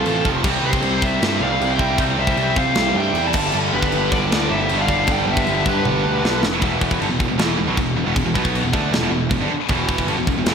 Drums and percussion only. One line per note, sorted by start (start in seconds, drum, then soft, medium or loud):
0.06 china medium
0.25 kick medium
0.44 kick loud
0.44 crash loud
0.44 china medium
0.73 kick loud
0.82 china medium
1.02 kick loud
1.22 snare loud
1.22 china medium
1.61 china medium
1.79 kick medium
1.98 kick loud
1.98 china medium
2.27 kick medium
2.37 china medium
2.56 kick loud
2.75 snare loud
2.75 china medium
3.15 china medium
3.33 kick loud
3.33 crash loud
3.52 china medium
3.82 kick medium
3.92 china medium
4.12 kick medium
4.32 snare loud
4.32 china medium
4.69 china medium
4.88 kick medium
5.07 kick loud
5.07 china medium
5.37 kick loud
5.47 china medium
5.66 kick loud
5.85 high tom medium
6.25 snare loud
6.43 snare loud
6.62 kick loud
6.62 china medium
6.81 kick medium
6.91 kick loud
7.02 china medium
7.20 kick medium
7.39 snare loud
7.39 china medium
7.77 kick medium
7.77 china medium
8.16 kick loud
8.16 china medium
8.35 kick medium
8.45 kick medium
8.55 china medium
8.73 kick medium
8.93 snare loud
8.93 china medium
9.31 kick medium
9.31 china medium
9.68 kick loud
9.68 china medium
9.89 kick loud
9.98 kick medium
10.08 china medium
10.27 kick medium
10.46 snare loud
10.46 china medium